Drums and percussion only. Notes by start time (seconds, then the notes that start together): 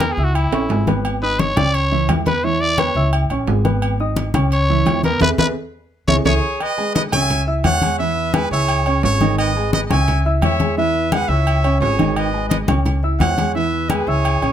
0.00 high conga, low timbale, low agogo
0.18 high conga
0.35 high conga, low agogo
0.53 high conga, high timbale, low agogo
0.70 high conga, low timbale
0.87 high conga, low timbale, low agogo
1.05 high conga, low agogo
1.23 high conga
1.39 high conga, low timbale, low agogo
1.57 high conga, low conga, low agogo
1.74 high conga, low agogo
1.92 high conga
2.09 high conga, low timbale, low agogo
2.26 high conga, low agogo
2.44 high conga
2.61 high conga
2.78 high conga, low timbale, low agogo
2.95 high conga
3.13 high conga, low agogo
3.30 high conga, low agogo
3.48 high conga, low timbale
3.65 high conga, low agogo
3.82 high conga, low agogo
4.00 high conga
4.16 high conga, low timbale, low agogo
4.34 high conga, low conga, low agogo
4.52 high conga, low agogo
4.69 high conga
4.86 high conga, low timbale, low agogo
5.04 high conga, low agogo
5.21 high conga, high timbale
5.38 high conga, high timbale
6.08 high conga, high timbale
6.26 high conga, high timbale
6.60 high conga, low agogo
6.78 high conga
6.95 high conga, low timbale, low agogo
7.12 high conga, low conga, low agogo
7.30 high conga, low conga, low agogo
7.48 high conga
7.64 high conga, low timbale, low agogo
7.82 high conga, low agogo
7.99 high conga
8.17 high conga
8.34 high conga, low timbale, low agogo
8.52 high conga
8.69 high conga, low agogo
8.86 high conga, low agogo
9.03 high conga, low timbale
9.21 high conga, low agogo
9.38 high conga, low agogo
9.56 high conga
9.73 high conga, low timbale, low agogo
9.91 high conga, low conga, low agogo
10.08 high conga, low conga, low agogo
10.25 high conga
10.42 high conga, low timbale, low agogo
10.60 high conga, low agogo
10.78 high conga
10.95 high conga
11.12 high conga, low timbale, low agogo
11.30 high conga
11.47 high conga, low agogo
11.64 high conga, low agogo
11.82 high conga, low timbale
11.99 high conga, low agogo
12.16 high conga, low agogo
12.34 high conga
12.51 high conga, low timbale, low agogo
12.68 high conga, low conga, low agogo
12.86 high conga, low conga, low agogo
13.03 high conga
13.20 high conga, low timbale, low agogo
13.38 high conga, low agogo
13.55 high conga
13.73 high conga
13.90 high conga, low timbale, low agogo
14.08 high conga
14.25 high conga, low agogo
14.42 high conga, low agogo